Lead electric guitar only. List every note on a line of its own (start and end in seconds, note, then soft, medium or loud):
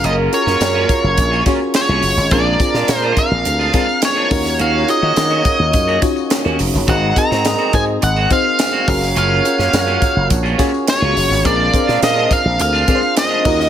0.05 0.13 D#5 loud
0.34 1.43 C#5 medium
1.76 2.32 C#5 medium
2.32 2.95 D5 loud
2.95 3.20 C5 loud
3.18 3.99 F5 loud
4.05 4.57 C#5 loud
4.61 4.90 F5 loud
4.90 5.99 D#5 medium
6.89 7.18 F#5 loud
7.18 7.74 A#5 loud
7.75 7.82 G#5 loud
8.04 8.30 F#5 medium
8.33 8.88 F5 medium
8.89 9.17 F5 medium
9.18 10.27 F5 medium
10.90 11.42 C#5 loud
11.46 11.99 D5 loud
12.04 12.32 D#5 loud
12.32 12.58 F5 loud
12.62 13.14 F5 loud
13.18 13.69 D#5 loud